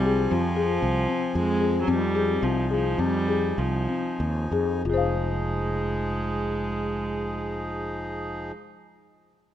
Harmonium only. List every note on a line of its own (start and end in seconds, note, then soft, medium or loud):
0.00 1.85 F3 medium
0.00 1.85 C4 medium
0.00 4.82 G#5 loud
1.87 4.83 F3 medium
1.87 4.83 D#4 medium
4.86 8.52 F3 medium
4.86 8.51 D#4 medium
4.86 8.52 G#4 medium